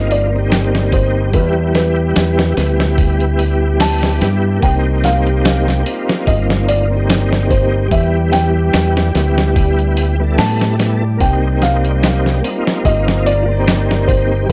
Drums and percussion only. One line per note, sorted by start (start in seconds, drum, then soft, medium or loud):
0.11 open hi-hat medium
0.51 snare loud
0.51 open hi-hat medium
0.51 maracas medium
0.75 snare soft
0.92 kick medium
0.92 open hi-hat medium
0.92 triangle medium
1.34 kick medium
1.34 open hi-hat medium
1.75 snare soft
1.75 open hi-hat medium
1.75 triangle medium
2.16 snare loud
2.16 open hi-hat medium
2.16 maracas medium
2.39 snare soft
2.57 snare soft
2.57 open hi-hat medium
2.80 snare medium
2.98 kick loud
2.98 open hi-hat medium
3.20 closed hi-hat soft
3.39 open hi-hat medium
3.80 snare loud
3.80 open hi-hat medium
3.80 maracas medium
4.03 snare medium
4.21 snare soft
4.21 open hi-hat medium
4.62 kick medium
4.62 open hi-hat medium
5.04 snare soft
5.04 open hi-hat medium
5.26 closed hi-hat soft
5.44 snare loud
5.44 open hi-hat medium
5.44 maracas medium
5.68 snare soft
5.86 open hi-hat medium
6.09 snare medium
6.27 kick loud
6.27 open hi-hat medium
6.50 snare soft
6.68 open hi-hat medium
7.10 snare loud
7.10 open hi-hat medium
7.10 maracas medium
7.33 snare soft
7.51 kick medium
7.51 open hi-hat medium
7.51 triangle medium
7.91 kick loud
7.91 open hi-hat medium
8.33 snare soft
8.33 open hi-hat medium
8.33 triangle medium
8.74 snare loud
8.74 open hi-hat medium
8.74 maracas medium
8.97 snare medium
9.15 snare soft
9.15 open hi-hat medium
9.38 snare medium
9.56 kick loud
9.56 open hi-hat medium
9.79 closed hi-hat soft
9.97 open hi-hat medium
9.97 triangle medium
10.38 snare loud
10.38 open hi-hat medium
10.38 maracas medium
10.61 snare soft
10.79 snare soft
10.79 open hi-hat medium
11.20 kick medium
11.20 open hi-hat medium
11.62 snare soft
11.62 open hi-hat medium
11.85 closed hi-hat soft
12.02 snare loud
12.02 open hi-hat medium
12.02 maracas medium
12.26 snare soft
12.44 open hi-hat medium
12.67 snare medium
12.85 kick loud
12.85 open hi-hat medium
13.08 snare medium
13.26 open hi-hat medium
13.67 snare loud
13.67 open hi-hat medium
13.67 maracas medium
13.91 snare soft
14.08 kick medium
14.08 open hi-hat medium
14.08 triangle medium